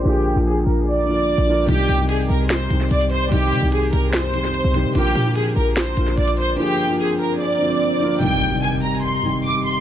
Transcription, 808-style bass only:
\new Staff \with { instrumentName = "808-style bass" } { \clef bass \time 4/4 \key c \minor \tempo 4 = 147 bes,,8. bes,,8. bes,,4.~ bes,,16 bes,,8. | c,8 c,4 c,4 c,8 c,4 | c,8 c16 c,8. c,4.~ c,16 c,8 c16 | bes,,8 bes,4 bes,,4 bes,,8 bes,,4 |
r1 | r1 | }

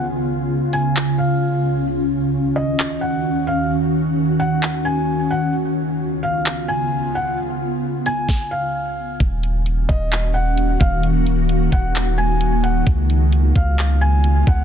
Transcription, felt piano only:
\new Staff \with { instrumentName = "Felt piano" } { \time 4/4 \key ees \minor \tempo 4 = 131 r4. aes''4 f''4. | r4. ees''4 ges''4 f''8 | r4. ges''4 aes''4 ges''8 | r4. f''4 aes''4 ges''8 |
r4. aes''4 f''4. | r4. ees''4 ges''4 f''8 | r4. ges''4 aes''4 ges''8 | r4. f''4 aes''4 ges''8 | }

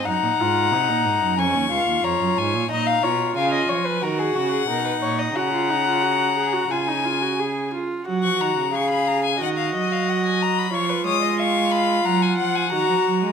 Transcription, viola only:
\new Staff \with { instrumentName = "Viola" } { \time 4/4 \key des \mixolydian \tempo 4 = 90 ees'8 f'8 ees'4 des'8 f'4. | \key fis \major dis'8 eis'4. fis'4 dis'4 | fis'16 eis'16 dis'16 eis'16 fis'8 gis'16 fis'16 eis'16 dis'16 eis'16 fis'16 gis'8 eis'8 | fis'4 gis'4 fis'2 |
eis'2. fis'4 | }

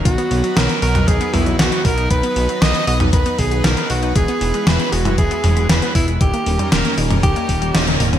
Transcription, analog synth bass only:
\new Staff \with { instrumentName = "Analog synth bass" } { \clef bass \time 4/4 \key b \major \tempo 4 = 117 b,,8 b,,8 b,,8 b,,8 b,,8 b,,8 b,,8 b,,8 | b,,8 b,,8 b,,8 b,,8 b,,8 b,,8 b,,8 b,,8 | e,,8 e,,8 e,,8 e,,8 e,,8 e,,8 e,,8 e,,8 | dis,,8 dis,,8 dis,,8 dis,,8 dis,,8 dis,,8 dis,,8 dis,,8 | }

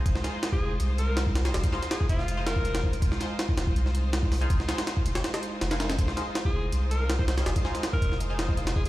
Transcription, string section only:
\new Staff \with { instrumentName = "String section" } { \time 4/4 \key f \minor \tempo 4 = 162 <aes ees' f' c''>4. <aes ees' f' c''>2~ <aes ees' f' c''>8 | <aes ees' f' c''>4. <aes ees' f' c''>2~ <aes ees' f' c''>8 | <aes ees' f' c''>4. <aes ees' f' c''>2~ <aes ees' f' c''>8 | <aes ees' f' c''>4. <aes ees' f' c''>2 <aes ees' f' c''>8 |
<aes ees' f' c''>4. <aes ees' f' c''>2~ <aes ees' f' c''>8 | <aes ees' f' c''>4. <aes ees' f' c''>2~ <aes ees' f' c''>8 | }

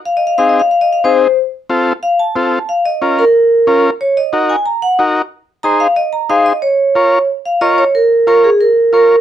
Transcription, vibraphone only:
\new Staff \with { instrumentName = "Vibraphone" } { \time 4/4 \key bes \minor \tempo 4 = 183 \tuplet 3/2 { f''8 ees''8 f''8 f''8 ees''8 f''8 f''8 ees''8 f''8 } c''4 | r2 f''8 a''4. | f''8 ees''4 bes'2 r8 | des''8 ees''4 aes''8 bes''8 ges''8 r4 |
r4 bes''8 f''8 ees''8 bes''8 f''8 ees''8 | des''2 r8 f''8 ees''8 des''8 | bes'4 bes'8 aes'8 bes'4 bes'4 | }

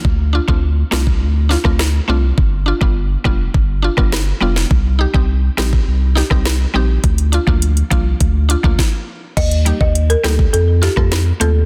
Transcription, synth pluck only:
\new Staff \with { instrumentName = "Synth pluck" } { \time 4/4 \key d \phrygian \tempo 4 = 103 r8 <d' f'>16 <a c' d' f'>16 r8 <a c' d' f'>16 r8. <d' f'>16 <a c' d' f'>16 r8 <a c' d' f'>16 r16 | r8 <d' f'>16 <g b d' f'>16 r8 <g b d' f'>16 r8. <d' f'>16 <g b d' f'>16 r8 <g b d' f'>16 r16 | r8 <ees' g'>16 <g c' ees' g'>16 r8 <g c' ees' g'>16 r8. <ees' g'>16 <g c' ees' g'>16 r8 <g c' ees' g'>16 r16 | r8 <d' f'>16 <f bes d' f'>16 r8 <f bes d' f'>16 r8. <d' f'>16 <f bes d' f'>16 r4 |
r8 <g bes ees' g'>16 r8. <g bes ees' g'>16 r8. <f' a'>16 <a c' f' a'>16 r8 <a c' f' a'>16 r16 | }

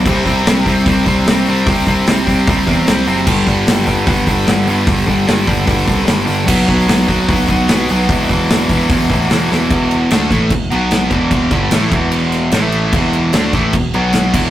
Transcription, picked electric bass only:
\new Staff \with { instrumentName = "Picked electric bass" } { \clef bass \time 4/4 \key e \minor \tempo 4 = 149 c,8 c,8 c,8 c,8 c,8 c,8 c,8 c,8 | c,8 c,8 c,8 c,8 c,8 e,8 c,8 fis,,8 | g,,8 g,,8 g,,8 g,,8 g,,8 g,,8 g,,8 g,,8 | g,,8 g,,8 g,,8 g,,8 g,,8 c,8 g,,8 g,,8 |
b,,8 b,,8 b,,8 b,,8 b,,8 b,,8 b,,8 b,,8 | e,,8 e,,8 e,,8 e,,8 e,,8 a,,8 e,,8 e,,8 | e,,4 d,8 a,,8 e,,8 b,,4 e,,8~ | e,,8 g,,8 a,,8 e,,4. a,,4 |
e,,4 d,8 a,,8 e,,8 b,,4 e,,8 | }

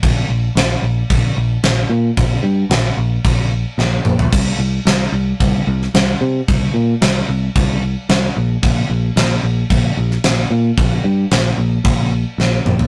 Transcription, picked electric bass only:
\new Staff \with { instrumentName = "Picked electric bass" } { \clef bass \time 4/4 \key bes \lydian \tempo 4 = 112 bes,,8 bes,,8 bes,,8 bes,,8 bes,,8 bes,,8 bes,,8 bes,8 | bes,,8 g,8 bes,,8 bes,,8 bes,,4 bes,,8 bes,,8 | c,8 c,8 c,8 c,8 c,8 c,8 c,8 c8 | c,8 bes,8 c,8 c,8 c,4 c,8 bes,,8 |
bes,,8 bes,,8 bes,,8 bes,,8 bes,,8 bes,,8 bes,,8 bes,8 | bes,,8 g,8 bes,,8 bes,,8 bes,,4 bes,,8 bes,,8 | }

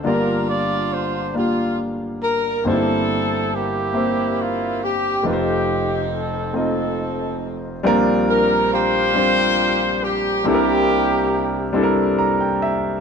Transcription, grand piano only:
<<
  \new Staff \with { instrumentName = "Grand piano" } { \time 6/8 \key bes \major \tempo 4. = 46 << { r2. | r2. | r2. | r2. |
r2 bes''16 g''16 e''8 | } \\ { <bes d' f' g' d''>4. <bes d' f' g' f''>4. | <bes c' ees' e' g' c''>4. <bes c' g' c'' e''>4. | <a c' ees' f' ces'' c''>4. <a c' ees' f' ees''>4. | <g c' d' f' bes'>4. <g c' d' f' c''>4. |
<g c' d' e' a' bes'>4. <g c' d' e' a' bes'>4. | } >> }
  \new Staff \with { instrumentName = "Grand piano" } { \clef bass \time 6/8 \key bes \major <g,, g,>2. | <g,, g,>2. | <f,, f,>2. | <bes,, bes,>2. |
<c, c>2. | }
>>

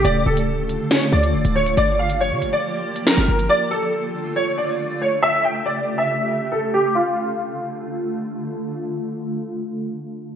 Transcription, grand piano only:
\new Staff \with { instrumentName = "Grand piano" } { \time 4/4 \key d \minor \tempo 4 = 139 d''8 a'4. cis''8 d''4 cis''8 | d''8 f''8 cis''8. d''4~ d''16 bes'4 | d''8 a'4. cis''8 d''4 cis''8 | e''8 g''8 d''8. e''4~ e''16 a'8 g'8 |
f'2. r4 | r1 | }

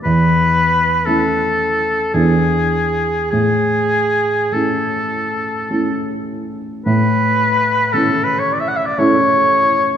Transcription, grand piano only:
\new Staff \with { instrumentName = "Grand piano" } { \time 3/4 \key a \major \tempo 4 = 56 e,4 <a cis' e'>4 <e, b d' e'>4 | a,4 <a cis' e'>4 <a cis' e'>4 | a,4 <a cis' e'>4 <a cis' e'>4 | }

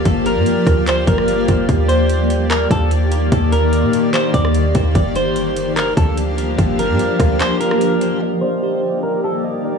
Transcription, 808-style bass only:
\new Staff \with { instrumentName = "808-style bass" } { \clef bass \time 4/4 \key ees \lydian \tempo 4 = 147 g,,8. g,16 r8 d,4 g,,4 g,,8 | ees,2~ ees,8 ees,4. | ees,4~ ees,16 bes,4~ bes,16 ees,4 ees,8 | g,,2~ g,,8 d,4. |
g,,8. g,16 r8 d,8 r2 | r1 | }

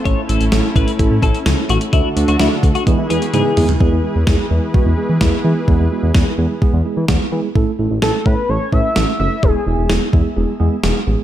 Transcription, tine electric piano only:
\new Staff \with { instrumentName = "Tine electric piano" } { \time 4/4 \key e \mixolydian \tempo 4 = 128 <a cis' e' a'>8 <a cis' e' a'>8 <a cis' e' a'>8 <a cis' e' a'>8 <a cis' e' a'>8 <a cis' e' a'>8 <a cis' e' a'>8 <a cis' e' a'>8 | <a d' fis' a'>8 <a d' fis' a'>8 <a d' fis' a'>8 <a d' fis' a'>8 <gis b e' gis'>8 <gis b e' gis'>8 <gis b e' gis'>8 <gis b e' gis'>8 | <gis b e' gis'>8 <gis b e' gis'>8 <gis b e' gis'>8 <gis b e' gis'>8 <gis b e' fis'>8 <gis b e' gis'>8 <gis b e' gis'>8 <gis b e' gis'>8 | <gis b e' gis'>8 <gis b e' fis'>8 <gis b e' gis'>8 <gis b e' gis'>8 <gis b e' gis'>8 <gis b e' gis'>8 <gis b e' gis'>8 <gis b e' gis'>8 |
<a cis' e' a'>8 <a cis' e' a'>8 <a cis' e' a'>8 <a cis' e' a'>8 <a cis' e' a'>8 <a cis' e' b'>8 <a cis' e' a'>8 <a cis' e' a'>8 | <gis b e' gis'>8 <gis b e' gis'>8 <gis b e' gis'>8 <gis b e' gis'>8 <gis b e' gis'>8 <gis b e' gis'>8 <gis b e' gis'>8 <gis b e' gis'>8 | }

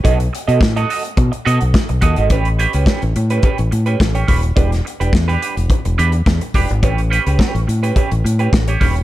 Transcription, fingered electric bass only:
\new Staff \with { instrumentName = "Fingered electric bass" } { \clef bass \time 4/4 \key a \mixolydian \tempo 4 = 106 b,,8 r16 b,16 a,8 r8 b,16 r16 b,16 b,,16 r16 b,,16 dis,16 gis,,16 | a,,8. cis,16 r16 a,,16 a,8 r16 a,,16 a,8 a,,8 dis,,8 | e,,8 r16 e,,16 e,8 r16 e,,16 r16 e,,16 e,8 e,16 r16 e,,16 gis,,16 | a,,8. cis,16 r16 a,,16 a,8 r16 a,,16 a,8 a,,8 dis,,8 | }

